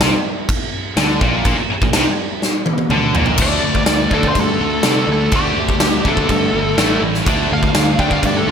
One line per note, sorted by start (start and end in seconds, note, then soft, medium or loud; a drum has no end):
0.01 0.12 C2 loud
0.01 0.12 C3 loud
0.01 snare loud
0.01 crash medium
0.49 kick loud
0.49 crash medium
0.96 1.19 D2 loud
0.96 1.21 D3 loud
0.96 snare loud
0.96 crash medium
1.21 1.44 A#1 medium
1.21 1.45 A#2 loud
1.21 kick loud
1.45 1.57 A#1 loud
1.45 1.57 A#2 loud
1.45 kick loud
1.45 crash medium
1.57 muted fingered electric bass stroke soft
1.57 muted distorted electric guitar stroke medium
1.57 muted overdriven electric guitar stroke medium
1.68 muted fingered electric bass stroke soft
1.68 muted distorted electric guitar stroke medium
1.68 muted overdriven electric guitar stroke medium
1.82 1.92 A#1 medium
1.82 1.92 A#2 medium
1.82 kick loud
1.92 2.05 C2 loud
1.92 2.05 C3 loud
1.92 snare loud
1.92 crash medium
2.42 snare medium
2.66 high tom medium
2.78 high tom medium
2.89 3.13 D2 loud
2.89 3.15 D3 medium
2.89 mid tom medium
3.13 3.37 A#1 medium
3.13 3.38 A#2 loud
3.13 floor tom loud
3.26 floor tom medium
3.38 3.59 D2 medium
3.38 3.62 D3 medium
3.38 3.62 A3 medium
3.38 3.62 D4 medium
3.38 kick loud
3.38 crash loud
3.38 crash medium
3.42 4.11 D5 medium
3.62 3.82 D2 medium
3.62 3.85 D3 medium
3.62 3.85 A3 medium
3.75 kick medium
3.86 4.07 D2 medium
3.86 4.10 D3 medium
3.86 4.10 A3 medium
3.86 snare loud
3.86 crash medium
4.11 4.31 D2 medium
4.11 4.35 D3 loud
4.11 4.35 A3 medium
4.11 4.35 D4 loud
4.11 4.25 A4 medium
4.11 kick medium
4.23 kick medium
4.28 4.38 C5 medium
4.35 4.55 G2 loud
4.35 4.58 D3 medium
4.35 4.58 A3 medium
4.35 kick medium
4.35 crash medium
4.41 5.09 A4 medium
4.60 4.80 D2 medium
4.60 4.82 D3 medium
4.60 4.83 A3 medium
4.83 5.03 C3 medium
4.83 5.07 D3 medium
4.83 5.07 A3 medium
4.83 5.07 D4 loud
4.83 snare loud
4.83 crash medium
5.07 5.28 D2 medium
5.07 5.30 D3 medium
5.07 5.30 A3 medium
5.13 5.34 A4 medium
5.32 5.52 D2 medium
5.32 5.56 D3 medium
5.32 5.56 A3 medium
5.32 5.56 D4 loud
5.32 kick loud
5.32 crash medium
5.36 6.05 G4 loud
5.55 5.76 D2 medium
5.55 5.79 D3 medium
5.55 5.79 A3 medium
5.69 kick medium
5.80 6.00 D2 medium
5.80 6.03 D3 medium
5.80 6.03 A3 medium
5.80 snare loud
5.80 crash medium
6.05 6.25 D2 medium
6.05 6.27 D3 medium
6.05 6.28 A3 medium
6.05 6.29 D4 loud
6.05 7.01 A4 loud
6.05 kick medium
6.17 kick medium
6.28 6.49 G2 medium
6.28 6.51 D3 medium
6.28 6.51 A3 loud
6.28 kick loud
6.28 crash medium
6.53 6.73 G1 medium
6.53 6.76 D3 medium
6.53 6.76 A3 medium
6.77 6.97 A1 loud
6.77 7.01 A2 medium
6.77 7.01 E3 medium
6.77 7.01 A3 loud
6.77 snare loud
6.77 crash medium
7.02 7.22 A1 medium
7.02 7.24 A2 medium
7.02 7.24 E3 medium
7.14 snare soft
7.26 7.46 D2 medium
7.26 7.49 D3 medium
7.26 7.49 A3 loud
7.26 7.49 D4 loud
7.26 kick loud
7.26 crash medium
7.51 7.70 D2 medium
7.51 7.73 D3 medium
7.51 7.73 A3 medium
7.51 7.99 F5 loud
7.63 kick medium
7.75 7.95 D2 loud
7.75 7.96 D3 medium
7.75 7.97 A3 medium
7.75 snare loud
7.75 crash medium
7.99 8.18 D2 medium
7.99 8.22 D3 loud
7.99 8.22 A3 medium
7.99 8.22 D4 loud
7.99 8.11 G5 medium
7.99 kick medium
8.11 8.24 F5 medium
8.11 kick medium
8.23 8.42 G2 loud
8.23 8.45 D3 medium
8.23 8.45 A3 medium
8.23 8.36 D5 medium
8.23 kick medium
8.23 crash medium
8.37 8.48 A4 medium
8.46 8.51 D2 medium
8.46 8.51 D3 medium